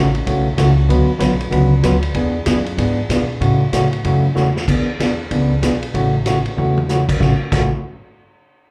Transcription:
0.00 0.26 A1 medium
0.15 ride soft
0.26 0.57 B1 medium
0.26 0.47 C#3 medium
0.26 0.47 E3 medium
0.26 0.47 A3 medium
0.26 0.47 C#4 medium
0.26 0.47 F#4 medium
0.26 kick soft
0.26 ride medium
0.57 0.89 C#2 medium
0.57 0.69 C#3 medium
0.57 0.69 E3 medium
0.57 0.69 A3 medium
0.57 0.69 C#4 medium
0.57 0.69 F#4 medium
0.57 kick soft
0.57 snare medium
0.57 hi-hat pedal medium
0.57 ride medium
0.88 1.08 D2 medium
0.88 1.09 D3 medium
0.88 1.10 F#3 medium
0.88 1.10 B3 medium
0.88 1.10 F#4 medium
0.88 1.10 B4 medium
0.88 kick soft
0.88 ride medium
1.09 muted upright bass stroke soft
1.19 1.51 B1 medium
1.19 1.31 D3 medium
1.19 1.31 F#3 medium
1.19 1.31 B3 medium
1.19 1.31 F#4 medium
1.19 1.31 B4 medium
1.19 kick soft
1.19 snare medium
1.19 hi-hat pedal medium
1.19 ride medium
1.41 ride soft
1.50 1.83 C#2 loud
1.50 1.72 D3 medium
1.50 1.72 F#3 medium
1.50 1.72 B3 medium
1.50 1.72 F#4 medium
1.50 1.72 B4 medium
1.50 kick soft
1.50 ride medium
1.83 2.14 D2 medium
1.83 1.95 D3 medium
1.83 1.95 F#3 medium
1.83 1.95 B3 medium
1.83 1.95 F#4 medium
1.83 1.95 B4 medium
1.83 kick soft
1.83 snare medium
1.83 hi-hat pedal medium
1.83 ride medium
2.03 ride medium
2.14 2.46 E2 medium
2.14 2.35 E3 medium
2.14 2.36 B3 medium
2.14 2.36 D4 medium
2.14 2.36 G#4 medium
2.14 kick soft
2.14 ride medium
2.46 2.77 F#2 medium
2.46 2.58 E3 medium
2.46 2.58 B3 medium
2.46 2.58 D4 medium
2.46 2.58 G#4 medium
2.46 kick soft
2.46 snare medium
2.46 hi-hat pedal medium
2.46 ride medium
2.66 ride soft
2.77 3.09 G#2 medium
2.77 2.98 E3 medium
2.77 2.99 B3 medium
2.77 2.99 D4 medium
2.77 2.99 G#4 medium
2.77 kick soft
2.77 ride medium
3.09 3.40 B2 medium
3.09 3.21 E3 medium
3.09 3.22 B3 medium
3.09 3.22 D4 medium
3.09 3.22 G#4 medium
3.09 kick soft
3.09 snare medium
3.09 hi-hat pedal medium
3.09 ride medium
3.40 3.72 A2 medium
3.40 3.61 C#3 medium
3.40 3.62 E3 medium
3.40 3.62 A3 medium
3.40 3.62 C#4 medium
3.40 3.62 F#4 medium
3.40 kick soft
3.40 ride medium
3.73 4.03 A2 medium
3.73 3.84 C#3 medium
3.73 3.84 E3 medium
3.73 3.84 A3 medium
3.73 3.84 C#4 medium
3.73 3.84 F#4 medium
3.73 kick soft
3.73 snare medium
3.73 hi-hat pedal medium
3.73 ride medium
3.93 ride soft
4.04 4.35 F#2 medium
4.04 4.25 C#3 medium
4.04 4.25 E3 medium
4.04 4.25 A3 medium
4.04 4.26 C#4 medium
4.04 4.26 F#4 medium
4.04 kick soft
4.04 ride medium
4.35 4.67 E2 medium
4.35 4.47 C#3 medium
4.35 4.47 E3 medium
4.35 4.47 A3 medium
4.35 4.47 C#4 medium
4.35 4.47 F#4 medium
4.35 snare soft
4.35 hi-hat pedal medium
4.56 snare medium
4.68 5.18 E2 medium
4.68 4.88 E3 medium
4.68 4.88 B3 medium
4.68 4.89 D4 medium
4.68 4.89 G#4 medium
4.68 kick medium
4.68 crash medium
5.00 5.11 E3 medium
5.00 5.11 B3 medium
5.00 5.11 D4 medium
5.00 5.11 G#4 medium
5.00 kick soft
5.00 snare medium
5.00 hi-hat pedal medium
5.00 ride medium
5.31 5.58 C#2 medium
5.31 5.51 E3 medium
5.31 5.52 B3 medium
5.31 5.52 D4 medium
5.31 5.52 G#4 medium
5.31 kick soft
5.31 ride medium
5.63 5.89 B1 medium
5.63 5.74 E3 medium
5.63 5.74 B3 medium
5.63 5.74 D4 medium
5.63 5.74 G#4 medium
5.63 kick soft
5.63 snare medium
5.63 hi-hat pedal medium
5.63 ride medium
5.83 ride soft
5.94 6.45 A1 medium
5.94 6.15 C#3 medium
5.94 6.15 E3 medium
5.94 6.15 A3 medium
5.94 6.15 C#4 medium
5.94 6.15 F#4 medium
5.94 kick soft
5.94 ride medium
6.26 6.37 C#3 medium
6.26 6.37 E3 medium
6.26 6.37 A3 medium
6.26 6.37 C#4 medium
6.26 6.37 F#4 medium
6.26 kick soft
6.26 snare medium
6.26 hi-hat pedal medium
6.26 ride medium
6.46 ride soft
6.57 7.08 E2 medium
6.57 6.78 C#3 medium
6.57 6.78 E3 medium
6.57 6.78 A3 medium
6.57 6.78 C#4 medium
6.57 6.78 F#4 medium
6.57 high tom soft
6.78 high tom medium
6.89 7.00 C#3 medium
6.89 7.00 E3 medium
6.89 7.00 A3 medium
6.89 7.00 C#4 medium
6.89 7.00 F#4 medium
6.89 snare medium
6.89 hi-hat pedal medium
7.09 kick medium
7.09 crash medium
7.19 7.31 A1 medium
7.19 7.32 A2 medium
7.19 7.32 C#3 medium
7.19 7.32 E3 medium
7.19 7.32 A3 medium
7.19 7.32 C#4 medium
7.19 7.32 F#4 medium
7.19 kick medium
7.19 snare medium
7.52 7.70 A1 medium
7.52 7.67 A2 medium
7.52 7.67 C#3 medium
7.52 7.68 E3 medium
7.52 7.68 A3 medium
7.52 7.68 C#4 medium
7.52 7.68 F#4 medium
7.52 kick medium
7.52 snare medium
7.52 crash medium

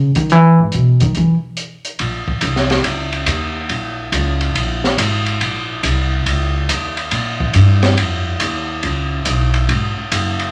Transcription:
0.00 0.15 C#3 medium
0.15 0.32 D#3 medium
0.15 closed hi-hat soft
0.30 0.58 E3 medium
0.30 closed hi-hat soft
0.59 0.72 G#2 medium
0.72 1.00 B2 medium
0.72 closed hi-hat soft
1.00 1.15 D#3 medium
1.00 closed hi-hat soft
1.15 1.33 E3 medium
1.15 closed hi-hat soft
1.57 closed hi-hat soft
1.85 closed hi-hat soft
1.99 2.26 A#1 medium
1.99 ride medium
2.28 muted upright bass stroke soft
2.28 kick soft
2.41 2.84 C2 medium
2.41 hi-hat pedal medium
2.41 ride medium
2.56 snare soft
2.70 snare soft
2.70 ride soft
2.84 3.26 C#2 medium
2.84 ride medium
3.12 ride soft
3.26 3.68 D#2 medium
3.26 hi-hat pedal medium
3.26 ride medium
3.69 4.12 A#1 medium
3.69 ride soft
4.12 4.54 C#2 medium
4.12 hi-hat pedal soft
4.12 ride medium
4.41 ride soft
4.55 4.97 A#1 medium
4.55 ride medium
4.84 snare soft
4.97 5.39 G#1 medium
4.97 hi-hat pedal medium
4.97 ride medium
5.26 ride soft
5.41 5.82 A#1 medium
5.41 ride medium
5.83 6.25 C2 medium
5.83 hi-hat pedal medium
5.83 ride medium
6.26 6.68 C#2 medium
6.26 ride medium
6.69 7.11 D#2 medium
6.69 hi-hat pedal medium
6.69 ride medium
6.97 ride soft
7.11 7.54 A#2 medium
7.11 ride medium
7.40 kick medium
7.54 7.96 G2 medium
7.54 hi-hat pedal soft
7.54 ride medium
7.82 snare soft
7.82 ride soft
7.97 8.39 F2 medium
7.97 ride medium
8.40 8.82 D#2 medium
8.40 hi-hat pedal medium
8.40 ride medium
8.83 9.25 C#2 medium
8.83 ride medium
9.25 9.68 B1 medium
9.25 hi-hat pedal medium
9.25 ride medium
9.54 ride soft
9.69 9.95 G#1 medium
9.69 ride medium
9.97 muted upright bass stroke soft
10.12 10.51 F#1 medium
10.12 hi-hat pedal medium
10.12 ride medium
10.39 ride soft

